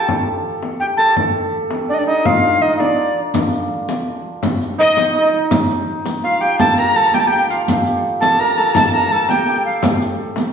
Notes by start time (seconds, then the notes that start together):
Already playing: F4 G4 A4
0.09 frame drum
0.27 frame drum
0.63 frame drum
0.80 G4 G5, frame drum
0.97 A4 A5
1.17 frame drum
1.35 frame drum
1.71 frame drum
1.88 D4 D5, frame drum
1.94 D#5
1.99 D4 D5
2.07 D#4 D#5
2.25 F4 F5, frame drum
2.62 D#4 D#5
2.80 D4 D5, frame drum
3.34 riq, frame drum
3.53 riq, frame drum
3.88 riq, frame drum
4.07 frame drum
4.43 riq, frame drum
4.61 riq, frame drum
4.78 D#4 D#5
4.97 riq, frame drum
5.15 D#4, frame drum
5.51 riq, frame drum
5.70 riq, frame drum
6.06 riq, frame drum
6.24 F4 F5
6.41 G4 G5
6.59 A4 A5, riq, frame drum
6.77 A#4 A#5, riq
6.96 A4 A5, riq
7.14 G4 G5, riq, frame drum
7.20 A5
7.27 G4 G5
7.33 frame drum
7.50 F4 F5, riq, frame drum
7.68 riq, frame drum
7.87 riq, frame drum
8.21 A4 A5, riq, frame drum
8.39 A#4 A#5, frame drum
8.57 A4 A5
8.75 A4 A5, riq, frame drum
8.94 A#4 A#5, riq, frame drum
9.12 A4 A5
9.29 G4 G5, riq, frame drum
9.47 G4, frame drum
9.66 F5
9.83 riq, frame drum
10.01 riq, frame drum
10.36 riq, frame drum